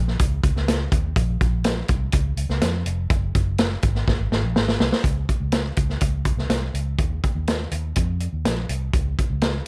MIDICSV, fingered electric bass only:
0, 0, Header, 1, 2, 480
1, 0, Start_track
1, 0, Key_signature, -5, "major"
1, 0, Tempo, 485830
1, 1150, Time_signature, 4, 2, 24, 8
1, 9559, End_track
2, 0, Start_track
2, 0, Title_t, "Fingered electric bass"
2, 0, Program_c, 0, 33
2, 0, Note_on_c, 0, 34, 85
2, 154, Note_off_c, 0, 34, 0
2, 197, Note_on_c, 0, 37, 92
2, 394, Note_off_c, 0, 37, 0
2, 429, Note_on_c, 0, 37, 90
2, 529, Note_off_c, 0, 37, 0
2, 545, Note_on_c, 0, 37, 97
2, 846, Note_off_c, 0, 37, 0
2, 910, Note_on_c, 0, 39, 98
2, 1109, Note_off_c, 0, 39, 0
2, 1148, Note_on_c, 0, 34, 107
2, 1347, Note_off_c, 0, 34, 0
2, 1392, Note_on_c, 0, 34, 95
2, 1788, Note_off_c, 0, 34, 0
2, 1869, Note_on_c, 0, 36, 87
2, 2067, Note_off_c, 0, 36, 0
2, 2108, Note_on_c, 0, 37, 108
2, 2306, Note_off_c, 0, 37, 0
2, 2336, Note_on_c, 0, 37, 81
2, 2440, Note_off_c, 0, 37, 0
2, 2461, Note_on_c, 0, 37, 92
2, 2563, Note_off_c, 0, 37, 0
2, 2585, Note_on_c, 0, 41, 81
2, 2784, Note_off_c, 0, 41, 0
2, 2823, Note_on_c, 0, 29, 96
2, 3023, Note_off_c, 0, 29, 0
2, 3066, Note_on_c, 0, 30, 110
2, 3265, Note_off_c, 0, 30, 0
2, 3309, Note_on_c, 0, 30, 103
2, 3705, Note_off_c, 0, 30, 0
2, 3788, Note_on_c, 0, 32, 92
2, 3985, Note_off_c, 0, 32, 0
2, 4027, Note_on_c, 0, 32, 101
2, 4126, Note_off_c, 0, 32, 0
2, 4139, Note_on_c, 0, 32, 87
2, 4241, Note_off_c, 0, 32, 0
2, 4259, Note_on_c, 0, 32, 90
2, 4361, Note_off_c, 0, 32, 0
2, 4375, Note_on_c, 0, 34, 90
2, 4478, Note_off_c, 0, 34, 0
2, 4498, Note_on_c, 0, 32, 90
2, 4700, Note_off_c, 0, 32, 0
2, 4740, Note_on_c, 0, 36, 94
2, 4841, Note_off_c, 0, 36, 0
2, 4979, Note_on_c, 0, 37, 89
2, 5180, Note_off_c, 0, 37, 0
2, 5338, Note_on_c, 0, 37, 87
2, 5640, Note_off_c, 0, 37, 0
2, 5703, Note_on_c, 0, 37, 75
2, 5903, Note_off_c, 0, 37, 0
2, 5943, Note_on_c, 0, 37, 81
2, 6243, Note_off_c, 0, 37, 0
2, 6296, Note_on_c, 0, 36, 70
2, 6399, Note_off_c, 0, 36, 0
2, 6415, Note_on_c, 0, 36, 82
2, 6618, Note_off_c, 0, 36, 0
2, 6658, Note_on_c, 0, 37, 87
2, 6860, Note_off_c, 0, 37, 0
2, 6901, Note_on_c, 0, 39, 89
2, 7103, Note_off_c, 0, 39, 0
2, 7265, Note_on_c, 0, 39, 85
2, 7565, Note_off_c, 0, 39, 0
2, 7623, Note_on_c, 0, 39, 77
2, 7824, Note_off_c, 0, 39, 0
2, 7869, Note_on_c, 0, 41, 101
2, 8168, Note_off_c, 0, 41, 0
2, 8227, Note_on_c, 0, 39, 76
2, 8327, Note_off_c, 0, 39, 0
2, 8343, Note_on_c, 0, 34, 81
2, 8545, Note_off_c, 0, 34, 0
2, 8587, Note_on_c, 0, 36, 85
2, 8787, Note_off_c, 0, 36, 0
2, 8829, Note_on_c, 0, 37, 105
2, 9029, Note_off_c, 0, 37, 0
2, 9187, Note_on_c, 0, 37, 93
2, 9487, Note_off_c, 0, 37, 0
2, 9559, End_track
0, 0, End_of_file